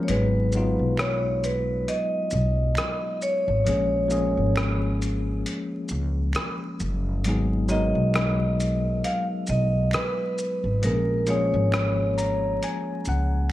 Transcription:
Already playing: tine electric piano F3
0.03 vibraphone C#5
0.08 upright bass G#1, tine electric piano F#3 G#3 B3 D#4 G#4, vibraphone B4, closed hi-hat
0.52 tine electric piano F#3 G#3 B3, shaker
0.56 tine electric piano D#4 F4
0.79 upright bass B1
0.97 vibraphone C#5, finger snap, cross-stick, closed hi-hat
1.44 vibraphone B4, closed hi-hat, shaker
1.88 vibraphone D#5, closed hi-hat
2.31 upright bass B1, shaker
2.75 finger snap, cross-stick, closed hi-hat
3.22 vibraphone C#5, shaker
3.48 upright bass G#1
3.65 upright bass A#1, tine electric piano F3 G#3 A#3 C#4 G#4, vibraphone C#5, closed hi-hat
4.09 tine electric piano F3 G#3 A#3 C#4 G#4, shaker
4.37 upright bass G#1
4.56 finger snap, cross-stick, closed hi-hat
5.02 closed hi-hat, shaker
5.46 closed hi-hat
5.89 upright bass C#2, shaker
6.33 finger snap, cross-stick, closed hi-hat
6.80 upright bass F#1, shaker
7.24 upright bass G#1, tine electric piano F#3 G#3 B3 D#4, closed hi-hat
7.29 tine electric piano G#4
7.69 tine electric piano F#3 G#3 B3 D#4 A#4, vibraphone D#5, shaker
7.95 upright bass B1
8.14 finger snap, cross-stick, closed hi-hat
8.60 closed hi-hat, shaker
9.04 vibraphone F5, closed hi-hat
9.47 upright bass B1, vibraphone D#5, shaker
9.91 vibraphone B4, finger snap, cross-stick, closed hi-hat
10.38 shaker
10.64 upright bass G#1
10.82 upright bass A#1, tine electric piano F3 G#3 A#3 C#4 G#4, vibraphone A#4, closed hi-hat
11.27 tine electric piano F3 G#3 A#3 C#4 G#4, vibraphone C#5, closed hi-hat, shaker
11.54 upright bass G#1
11.72 finger snap, cross-stick, closed hi-hat
12.18 tine electric piano A#5, closed hi-hat, shaker
12.63 tine electric piano G#5, closed hi-hat
13.05 upright bass C#2, tine electric piano F#5, shaker

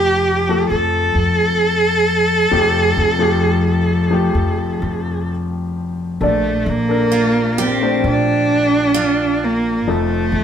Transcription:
Already playing: grand piano F1 F2 F3 A3 G4, upright bass F2, cello G4
0.49 grand piano F3 A3 A4
0.70 upright bass F2, cello A4
1.15 upright bass F2
2.51 grand piano F1 F2 F3 A3 G4, upright bass F2
2.98 upright bass F2
3.19 grand piano F3 A3 G4
4.11 grand piano F3 A3 G4
4.35 upright bass F2
4.82 upright bass F2
6.21 upright bass A#1, grand piano A#1 A#2 D4 A4 D5, cello A3
6.66 upright bass A#2, cello A#3
6.89 grand piano D4 A4 A#4
7.12 steel-string acoustic guitar F4
7.58 cello C4, steel-string acoustic guitar G4
7.82 grand piano A3 D4 C5
8.04 upright bass A#1, cello D4
8.94 steel-string acoustic guitar F4
9.44 cello A#3
9.86 upright bass F1, grand piano F1 F2 F3 D#4 A4, cello A3
10.32 upright bass F2

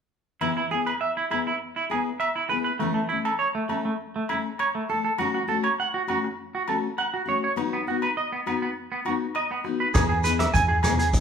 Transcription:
0.41 steel-string acoustic guitar E3 B3 E4 G#4, clean electric guitar E4, low agogo
0.57 clean electric guitar E4
0.71 steel-string acoustic guitar B3 E4 G#4, clean electric guitar G#4
0.86 clean electric guitar B4, low agogo
1.01 clean electric guitar E5
1.17 clean electric guitar E4
1.30 steel-string acoustic guitar B3 E4 G#4, clean electric guitar E4, low agogo
1.47 clean electric guitar E4
1.76 clean electric guitar E4
1.90 steel-string acoustic guitar B3 E4 G#4, clean electric guitar G#4, low agogo
2.20 clean electric guitar E5, low agogo
2.36 clean electric guitar E4
2.49 steel-string acoustic guitar B3 E4 G#4, clean electric guitar B4
2.64 clean electric guitar B4
2.79 steel-string acoustic guitar E3 A3 C#4 A4, clean electric guitar A3, low agogo
2.94 clean electric guitar A3
3.09 steel-string acoustic guitar A3 C#4, clean electric guitar E4, muted steel-string acoustic guitar stroke
3.25 clean electric guitar A4, low agogo
3.39 clean electric guitar C#5
3.55 clean electric guitar A3
3.69 clean electric guitar A3, steel-string acoustic guitar A3 C#4 A4, low agogo
3.85 clean electric guitar A3
4.16 clean electric guitar A3
4.29 steel-string acoustic guitar A3 C#4 A4, clean electric guitar E4, low agogo
4.59 clean electric guitar C#5, low agogo
4.75 clean electric guitar A3
4.89 steel-string acoustic guitar A3 A4, clean electric guitar A4
5.05 clean electric guitar A4
5.18 steel-string acoustic guitar F#3 A3 C#4 F#4, clean electric guitar F#4, low agogo
5.34 clean electric guitar F#4
5.48 steel-string acoustic guitar A3 C#4 F#4, clean electric guitar A4
5.64 clean electric guitar C#5, low agogo
5.80 clean electric guitar F#5
5.94 clean electric guitar F#4
6.07 steel-string acoustic guitar A3 C#4 F#4, clean electric guitar F#4, low agogo
6.24 muted clean electric guitar stroke
6.55 clean electric guitar F#4
6.68 steel-string acoustic guitar A3 C#4 F#4, clean electric guitar A4, low agogo
6.98 clean electric guitar F#5, low agogo
7.14 clean electric guitar F#4
7.26 steel-string acoustic guitar A3 C#4 F#4, clean electric guitar C#5
7.44 clean electric guitar C#5
7.56 steel-string acoustic guitar F#3 B3 D#4 F#4, muted clean electric guitar stroke, low agogo
7.73 clean electric guitar B3
7.87 steel-string acoustic guitar B3 D#4 F#4, clean electric guitar F#4
8.02 clean electric guitar B4, low agogo
8.17 clean electric guitar D#5
8.32 clean electric guitar B3
8.46 clean electric guitar B3, steel-string acoustic guitar B3 D#4 F#4, low agogo
8.62 clean electric guitar B3
8.92 clean electric guitar B3
9.05 steel-string acoustic guitar B3 D#4 F#4, clean electric guitar F#4, low agogo
9.35 clean electric guitar D#5, low agogo
9.51 clean electric guitar B3
9.64 steel-string acoustic guitar B3 D#4 F#4, muted clean electric guitar stroke
9.80 clean electric guitar B4
9.94 fingered electric bass E2, steel-string acoustic guitar E3 B3 E4 G#4, clean electric guitar G#4, kick, cross-stick, closed hi-hat, low agogo, shekere
10.09 clean electric guitar G#4
10.24 steel-string acoustic guitar B3 E4 G#4, clean electric guitar B4, closed hi-hat, shekere
10.39 clean electric guitar E5, cross-stick, closed hi-hat, high conga, low agogo
10.54 fingered electric bass E2, clean electric guitar G#5, kick, closed hi-hat, shekere
10.69 clean electric guitar G#4
10.83 steel-string acoustic guitar E4 G#4, clean electric guitar G#4, cross-stick, closed hi-hat, high conga, low conga, low agogo, shekere
10.87 steel-string acoustic guitar B3
10.99 clean electric guitar G#4, closed hi-hat
11.13 fingered electric bass B1, kick, closed hi-hat, shekere

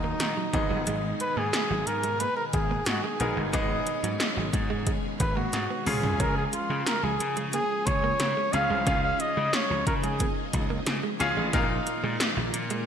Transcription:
Already playing: slap bass D#2, string machine A#2 D#3 F#3 D#4 F#4, grand piano D#3 A#3 D#4 F4 F#4 D#5, flugelhorn D#4
0.04 clean electric guitar A#3
0.20 slap bass D#3, snare, closed hi-hat
0.37 clean electric guitar F#3
0.53 slap bass G#1, grand piano G#2 B3 D#4 G#4 D#5, string machine B2 G#3 G#4, muted clean electric guitar stroke, kick, closed hi-hat
0.70 slap bass G1, clean electric guitar F#3
0.87 slap bass G#1, clean electric guitar G#3, closed hi-hat
1.20 flugelhorn B4, muted clean electric guitar stroke, closed hi-hat
1.37 slap bass G#2, clean electric guitar A#3, flugelhorn G#4
1.53 snare, closed hi-hat
1.70 slap bass G#1, clean electric guitar F#3
1.87 slap bass G#2, flugelhorn A#4, muted clean electric guitar stroke, closed hi-hat
2.03 clean electric guitar G#3, closed hi-hat
2.20 clean electric guitar A#3, flugelhorn B4, closed hi-hat
2.37 flugelhorn A#4
2.53 slap bass G#1, flugelhorn G#4, muted clean electric guitar stroke, kick, closed hi-hat
2.71 clean electric guitar A#3
2.86 slap bass G#2, flugelhorn F#4, snare, closed hi-hat
3.04 clean electric guitar G#3, flugelhorn G#4
3.20 slap bass A#1, grand piano G#2 B3 D#4 G#4 A#4, string machine C#4, muted clean electric guitar stroke, closed hi-hat
3.37 slap bass G1, clean electric guitar G#3
3.53 slap bass G#1, clean electric guitar G#3, grand piano B3 D#4 G#4 D#5, kick, closed hi-hat
3.87 muted clean electric guitar stroke, closed hi-hat
4.03 slap bass G#2, clean electric guitar F#3, closed hi-hat
4.20 snare, closed hi-hat
4.37 slap bass G#1, clean electric guitar F#3
4.53 slap bass G#2, muted clean electric guitar stroke, kick, closed hi-hat
4.70 clean electric guitar G#3
4.87 clean electric guitar G#3, kick, closed hi-hat
5.20 slap bass G#1, flugelhorn B4, muted clean electric guitar stroke, kick, closed hi-hat
5.37 clean electric guitar A#3, flugelhorn F#4
5.53 slap bass G#2, snare, closed hi-hat
5.70 clean electric guitar B3
5.86 slap bass C#2, string machine C#3 F3 F4, grand piano C#3 C#4 F4 G#4 F5, flugelhorn G#4, muted clean electric guitar stroke, mid tom, open hi-hat
6.03 slap bass C2, clean electric guitar C#4, floor tom
6.20 slap bass C#2, clean electric guitar C#4, flugelhorn A#4, kick, closed hi-hat
6.37 flugelhorn G#4
6.53 flugelhorn F4, muted clean electric guitar stroke, closed hi-hat
6.70 slap bass C#3, clean electric guitar G#3
6.86 flugelhorn A#4, snare, closed hi-hat
7.03 slap bass C#2, clean electric guitar F3, flugelhorn G#4
7.20 slap bass C#3, muted clean electric guitar stroke, closed hi-hat
7.37 clean electric guitar G#3, closed hi-hat
7.53 clean electric guitar A#3, flugelhorn G#4, closed hi-hat
7.87 slap bass C#2, flugelhorn C#5, muted clean electric guitar stroke, kick, closed hi-hat
8.04 clean electric guitar A#3
8.20 slap bass C#3, snare, closed hi-hat
8.37 clean electric guitar G#3
8.53 slap bass C#2, grand piano C#3 C#4 F4 G#4 F5, string machine D#4, flugelhorn F5, muted clean electric guitar stroke, closed hi-hat
8.70 slap bass C2, clean electric guitar G#3
8.86 slap bass C#2, grand piano C#4 F4 G#4 F5, clean electric guitar C#4, kick, closed hi-hat
9.04 flugelhorn F5
9.20 flugelhorn D#5, muted clean electric guitar stroke, closed hi-hat
9.37 slap bass C#3, clean electric guitar G#3
9.53 flugelhorn C#5, snare, closed hi-hat
9.70 slap bass C#2, clean electric guitar F3
9.87 slap bass C#3, flugelhorn A#4, muted clean electric guitar stroke, kick, closed hi-hat
10.04 clean electric guitar G#3, flugelhorn G#4, closed hi-hat
10.20 clean electric guitar A#3, kick, closed hi-hat
10.53 slap bass C#2, muted clean electric guitar stroke, kick, closed hi-hat
10.70 clean electric guitar A#3
10.86 slap bass C#3, snare, closed hi-hat
11.03 clean electric guitar G#3
11.20 slap bass C#2, grand piano C#4 F4 G#4 F5, muted clean electric guitar stroke, closed hi-hat
11.37 slap bass A1, clean electric guitar G#3
11.53 slap bass A#1, grand piano A#2 D#4 F4 A#4 F5, string machine D#3 A#3 F4 A#4, clean electric guitar A#3, kick, closed hi-hat
11.87 muted clean electric guitar stroke, closed hi-hat
12.03 slap bass A#2, clean electric guitar G#3
12.20 snare, closed hi-hat
12.37 slap bass A#1, clean electric guitar F3
12.53 slap bass A#2, muted clean electric guitar stroke, closed hi-hat
12.70 clean electric guitar G#3, closed hi-hat

